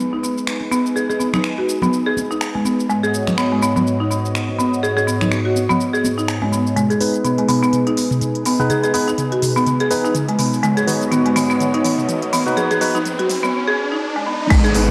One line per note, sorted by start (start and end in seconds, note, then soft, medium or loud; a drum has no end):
0.00 2.86 G#3 medium
0.00 2.86 D#4 medium
0.00 2.86 G#4 medium
0.00 2.86 B4 medium
0.00 shaker soft
0.13 0.22 D#4 medium
0.23 0.36 B3 medium
0.23 muted conga soft
0.23 shaker medium
0.38 shaker soft
0.47 finger snap loud
0.47 shaker soft
0.61 muted conga soft
0.71 0.85 B3 medium
0.71 high conga medium
0.71 shaker medium
0.86 shaker soft
0.96 1.08 G#4 medium
0.96 shaker soft
1.10 1.19 G#4 medium
1.10 muted conga soft
1.10 shaker soft
1.20 1.32 B3 medium
1.20 high conga medium
1.20 shaker medium
1.33 1.43 D#4 medium
1.33 finger snap medium
1.33 high conga medium
1.33 low conga loud
1.33 shaker soft
1.44 finger snap loud
1.44 muted conga soft
1.44 shaker soft
1.58 1.64 F#4 medium
1.69 shaker medium
1.82 1.88 B3 medium
1.82 muted conga soft
1.82 low conga loud
1.82 shaker soft
1.93 shaker soft
2.06 2.16 G#4 medium
2.17 muted conga soft
2.17 high conga loud
2.17 shaker medium
2.31 2.40 D#4 medium
2.31 shaker soft
2.41 finger snap loud
2.41 shaker medium
2.55 2.65 G#3 medium
2.55 muted conga soft
2.55 high conga medium
2.65 2.73 B3 medium
2.65 high conga medium
2.65 shaker medium
2.80 shaker soft
2.89 6.73 G#2 medium
2.89 3.03 G#3 medium
2.89 6.73 B3 medium
2.89 6.73 F#4 medium
2.89 6.73 C#5 medium
2.89 6.73 D#5 medium
2.89 shaker soft
3.03 3.13 G#4 medium
3.03 muted conga soft
3.03 shaker soft
3.14 shaker medium
3.27 finger snap medium
3.27 high conga medium
3.27 low conga medium
3.27 shaker soft
3.38 3.50 B3 medium
3.38 finger snap loud
3.38 muted conga soft
3.38 shaker soft
3.52 3.61 G#3 medium
3.62 3.75 B3 medium
3.62 high conga medium
3.62 shaker medium
3.76 3.85 B3 medium
3.76 muted conga soft
3.76 low conga loud
3.76 shaker soft
3.87 shaker medium
4.00 4.10 D#4 medium
4.11 4.23 B3 medium
4.11 muted conga soft
4.11 shaker medium
4.25 shaker soft
4.35 finger snap loud
4.35 shaker medium
4.49 muted conga soft
4.59 4.72 B3 medium
4.59 high conga medium
4.59 shaker medium
4.74 shaker soft
4.83 4.96 G#4 medium
4.83 shaker soft
4.97 5.06 G#4 medium
4.97 muted conga soft
4.97 shaker soft
5.07 5.20 B3 medium
5.07 high conga medium
5.07 shaker medium
5.20 5.31 D#4 medium
5.20 finger snap medium
5.20 high conga medium
5.20 low conga loud
5.20 shaker soft
5.32 finger snap medium
5.32 muted conga soft
5.32 shaker medium
5.45 5.51 F#4 medium
5.56 high conga medium
5.56 shaker medium
5.69 5.75 B3 medium
5.69 muted conga soft
5.69 low conga medium
5.69 shaker soft
5.81 shaker soft
5.93 6.03 G#4 medium
5.93 shaker soft
6.04 muted conga soft
6.04 high conga loud
6.04 shaker medium
6.18 6.27 D#4 medium
6.18 shaker soft
6.28 finger snap loud
6.28 shaker soft
6.42 6.52 G#3 medium
6.42 muted conga soft
6.42 high conga medium
6.52 6.60 B3 medium
6.52 high conga medium
6.52 shaker medium
6.67 shaker soft
6.76 6.90 G#3 medium
6.76 10.60 G#3 medium
6.76 10.60 D#4 medium
6.76 10.60 G#4 medium
6.76 10.60 B4 medium
6.76 closed hi-hat medium
6.76 mid tom soft
6.76 riser medium
6.76 shaker soft
6.90 7.00 G#4 loud
6.90 closed hi-hat soft
6.90 shaker soft
7.01 8.56 B3 medium
7.01 8.56 D#4 medium
7.01 8.56 G#4 medium
7.01 8.56 B4 medium
7.01 open hi-hat medium
7.01 shaker medium
7.14 closed hi-hat soft
7.14 shaker soft
7.24 7.37 B3 medium
7.24 closed hi-hat medium
7.24 mid tom soft
7.24 shaker soft
7.38 7.48 G#3 medium
7.38 closed hi-hat soft
7.49 7.61 B3 medium
7.49 open hi-hat medium
7.49 mid tom medium
7.49 shaker medium
7.63 7.72 B3 loud
7.63 shaker soft
7.73 closed hi-hat medium
7.73 mid tom soft
7.73 shaker soft
7.87 7.96 D#4 medium
7.87 closed hi-hat soft
7.97 8.10 B3 medium
7.97 open hi-hat medium
7.97 shaker medium
8.11 mid tom medium
8.11 shaker soft
8.21 closed hi-hat medium
8.21 mid tom medium
8.21 shaker medium
8.35 closed hi-hat soft
8.45 8.59 B3 loud
8.45 open hi-hat medium
8.45 shaker medium
8.59 8.92 B3 medium
8.59 8.92 D#4 medium
8.59 8.92 G#4 medium
8.59 8.92 B4 loud
8.59 mid tom medium
8.59 shaker soft
8.70 8.83 G#4 medium
8.70 closed hi-hat medium
8.70 mid tom medium
8.70 shaker medium
8.83 8.93 G#4 medium
8.83 closed hi-hat soft
8.83 shaker soft
8.94 9.06 B3 medium
8.94 9.10 B3 medium
8.94 9.10 D#4 medium
8.94 9.10 G#4 medium
8.94 9.10 B4 medium
8.94 open hi-hat medium
8.94 shaker medium
9.08 9.17 D#4 medium
9.08 closed hi-hat soft
9.08 shaker soft
9.18 closed hi-hat medium
9.18 mid tom medium
9.18 shaker soft
9.32 9.38 F#4 medium
9.32 closed hi-hat soft
9.42 open hi-hat medium
9.42 mid tom medium
9.42 shaker medium
9.56 9.62 B3 loud
9.56 shaker soft
9.67 closed hi-hat medium
9.67 mid tom medium
9.67 shaker medium
9.80 9.90 G#4 loud
9.80 closed hi-hat soft
9.91 10.13 B3 medium
9.91 10.14 D#4 medium
9.91 10.13 G#4 medium
9.91 10.13 B4 loud
9.91 open hi-hat medium
9.91 shaker medium
10.05 10.14 D#4 medium
10.05 shaker soft
10.15 closed hi-hat medium
10.15 mid tom medium
10.15 shaker medium
10.29 10.39 G#3 medium
10.29 closed hi-hat soft
10.39 10.47 B3 medium
10.39 open hi-hat medium
10.39 mid tom medium
10.39 shaker medium
10.54 shaker soft
10.63 13.51 G#2 medium
10.63 10.77 G#3 loud
10.63 13.51 B3 medium
10.63 13.51 F#4 medium
10.63 12.55 C#5 medium
10.63 13.51 D#5 medium
10.63 closed hi-hat medium
10.63 mid tom medium
10.63 shaker medium
10.77 10.87 G#4 medium
10.77 closed hi-hat soft
10.77 shaker soft
10.87 12.43 B3 medium
10.87 12.43 D#4 medium
10.87 12.43 F#4 medium
10.87 12.43 B4 medium
10.87 open hi-hat medium
10.87 mid tom medium
10.87 shaker medium
11.02 closed hi-hat soft
11.02 shaker soft
11.12 11.24 B3 medium
11.12 closed hi-hat medium
11.12 mid tom medium
11.12 shaker medium
11.26 11.35 G#3 medium
11.26 closed hi-hat soft
11.36 11.49 B3 loud
11.36 open hi-hat medium
11.36 mid tom medium
11.36 shaker loud
11.50 11.59 B3 loud
11.50 shaker soft
11.60 closed hi-hat medium
11.60 mid tom medium
11.60 shaker medium
11.74 11.84 D#4 medium
11.74 closed hi-hat soft
11.85 11.97 B3 medium
11.85 open hi-hat medium
11.85 mid tom medium
11.85 shaker medium
11.98 mid tom medium
11.98 shaker soft
12.09 closed hi-hat medium
12.09 mid tom medium
12.09 shaker medium
12.22 closed hi-hat soft
12.33 12.46 B3 loud
12.33 open hi-hat medium
12.33 mid tom medium
12.33 shaker medium
12.46 12.79 B3 loud
12.46 12.79 D#4 medium
12.46 12.79 F#4 medium
12.46 12.79 B4 loud
12.46 mid tom medium
12.46 shaker soft
12.57 12.70 G#4 loud
12.57 13.53 B4 medium
12.57 closed hi-hat medium
12.57 mid tom medium
12.57 shaker medium
12.71 12.80 G#4 loud
12.71 closed hi-hat soft
12.71 mid tom medium
12.71 shaker soft
12.81 12.94 B3 medium
12.81 12.97 B3 medium
12.81 12.97 D#4 medium
12.81 12.97 F#4 medium
12.81 12.97 B4 medium
12.81 open hi-hat medium
12.81 mid tom loud
12.81 shaker medium
12.95 13.04 D#4 medium
12.95 closed hi-hat soft
12.95 mid tom medium
12.95 shaker soft
13.05 closed hi-hat medium
13.05 mid tom medium
13.05 shaker medium
13.19 13.25 F#4 medium
13.19 closed hi-hat soft
13.19 mid tom medium
13.30 open hi-hat medium
13.30 mid tom loud
13.30 shaker loud
13.43 13.49 B3 loud
13.43 mid tom medium
13.43 shaker soft
13.68 13.77 G#4 loud
13.92 14.01 D#4 medium
14.16 14.26 G#3 medium
14.26 14.34 B3 medium
14.50 14.91 G#1 loud
14.50 14.64 G#3 loud
14.50 14.91 G#3 medium
14.50 14.91 D#4 medium
14.50 14.91 G#4 medium
14.50 14.91 B4 medium
14.50 kick loud
14.50 closed hi-hat medium
14.50 crash loud
14.50 downlifter medium
14.50 shaker medium
14.64 14.74 G#4 loud
14.64 closed hi-hat soft
14.64 shaker soft
14.74 14.91 B3 medium
14.74 14.91 D#4 medium
14.74 14.91 G#4 medium
14.74 14.91 B4 medium
14.74 open hi-hat medium
14.74 shaker medium